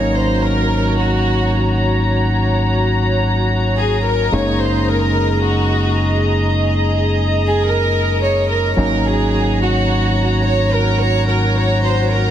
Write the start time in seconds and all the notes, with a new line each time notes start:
Already playing: G#1 F#3 A#3 C#4 D#4 F#4 C#5 A#5
0.17 C5
0.44 A#4
1.00 F#4
3.77 G#4
4.05 A#4
4.32 F#1 G#3 A#3 C#4 D#4 G#4 C#5 D#5
4.62 C5
4.90 A#4
5.45 F#4
7.48 G#4
7.67 A#4
8.23 C#5
8.51 A#4
8.77 G#1 F#3 A#3 C#4 D#4 F#4 A#4 C#5 A#5
9.06 G#4
9.61 F#4
10.45 C#5
10.72 A#4
11.00 C#5
11.28 A#4
11.56 C#5
11.85 C5
12.12 A#4